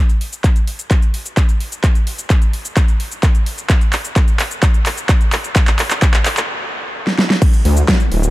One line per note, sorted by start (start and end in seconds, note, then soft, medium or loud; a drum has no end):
0.09 closed hi-hat soft
0.09 shaker soft
0.21 open hi-hat loud
0.33 closed hi-hat soft
0.33 shaker medium
0.44 kick loud
0.44 clap soft
0.44 closed hi-hat medium
0.44 shaker medium
0.56 closed hi-hat soft
0.56 shaker soft
0.67 open hi-hat medium
0.79 closed hi-hat soft
0.79 shaker medium
0.91 kick loud
0.91 clap soft
0.91 closed hi-hat medium
0.91 shaker medium
1.02 closed hi-hat soft
1.02 shaker soft
1.14 open hi-hat loud
1.26 closed hi-hat soft
1.26 shaker medium
1.37 kick loud
1.37 clap medium
1.37 closed hi-hat medium
1.37 shaker medium
1.49 closed hi-hat soft
1.49 shaker soft
1.60 open hi-hat medium
1.72 closed hi-hat soft
1.72 shaker medium
1.84 kick loud
1.84 clap medium
1.84 closed hi-hat medium
1.84 shaker medium
1.95 closed hi-hat soft
1.95 shaker soft
2.07 open hi-hat loud
2.19 closed hi-hat soft
2.19 shaker medium
2.30 kick loud
2.30 clap medium
2.30 closed hi-hat medium
2.30 shaker medium
2.42 closed hi-hat soft
2.42 shaker soft
2.53 open hi-hat medium
2.65 closed hi-hat soft
2.65 shaker medium
2.77 kick loud
2.77 clap medium
2.77 closed hi-hat medium
2.77 shaker medium
2.88 closed hi-hat soft
2.88 shaker soft
3.00 open hi-hat loud
3.12 closed hi-hat soft
3.12 shaker medium
3.23 kick loud
3.23 clap medium
3.23 closed hi-hat medium
3.23 shaker medium
3.35 closed hi-hat soft
3.35 shaker soft
3.46 open hi-hat loud
3.58 closed hi-hat soft
3.58 shaker medium
3.70 kick loud
3.70 clap medium
3.70 closed hi-hat medium
3.70 shaker medium
3.81 closed hi-hat soft
3.81 shaker soft
3.93 clap medium
3.93 open hi-hat loud
4.05 closed hi-hat soft
4.05 shaker medium
4.16 kick loud
4.16 clap medium
4.16 closed hi-hat medium
4.16 shaker medium
4.28 closed hi-hat soft
4.28 shaker soft
4.39 clap medium
4.39 open hi-hat loud
4.51 closed hi-hat soft
4.51 shaker medium
4.63 kick loud
4.63 clap medium
4.63 closed hi-hat medium
4.63 shaker medium
4.74 closed hi-hat soft
4.74 shaker soft
4.86 clap medium
4.86 open hi-hat loud
4.98 closed hi-hat soft
4.98 shaker medium
5.09 kick loud
5.09 clap medium
5.09 closed hi-hat medium
5.09 shaker medium
5.21 closed hi-hat soft
5.21 shaker soft
5.32 clap medium
5.32 open hi-hat loud
5.44 closed hi-hat soft
5.44 shaker medium
5.56 kick loud
5.56 clap medium
5.56 closed hi-hat medium
5.56 shaker medium
5.67 clap medium
5.67 closed hi-hat soft
5.67 shaker soft
5.79 clap medium
5.79 open hi-hat loud
5.91 clap medium
5.91 closed hi-hat soft
5.91 shaker medium
6.02 kick loud
6.02 clap loud
6.02 closed hi-hat medium
6.02 shaker medium
6.14 clap medium
6.14 closed hi-hat soft
6.14 shaker soft
6.25 clap loud
6.25 open hi-hat loud
6.37 clap medium
6.37 closed hi-hat soft
6.37 shaker medium
7.07 snare medium
7.19 snare medium
7.30 snare medium
7.42 kick loud
7.42 closed hi-hat medium
7.42 crash loud
7.42 shaker medium
7.54 closed hi-hat soft
7.54 shaker soft
7.65 7.83 D2 loud
7.65 open hi-hat loud
7.77 closed hi-hat soft
7.77 shaker medium
7.88 kick loud
7.88 snare loud
7.88 closed hi-hat medium
7.88 shaker medium
8.00 closed hi-hat soft
8.00 shaker soft
8.12 8.29 D1 medium
8.12 open hi-hat medium
8.23 closed hi-hat soft
8.23 shaker medium